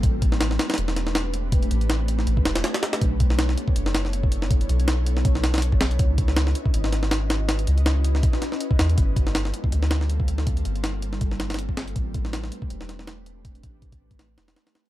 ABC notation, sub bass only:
X:1
M:4/4
L:1/8
Q:"Swing 16ths" 1/4=161
K:A
V:1 name="Sub bass" clef=bass
A,,,3 z E,,,4- | E,,, A,,,3 A,,, E,,, z2 | B,,,3 z F,,,4- | F,,, B,,,3 B,,,4 |
C,,3 z G,,,4- | G,,, C,,3 z3 E,, | =G,,,3 z D,,4- | D,, =G,,,3 G,,,4 |
A,,,3 z E,,,4- | E,,, A,,,3 A,,,4 |]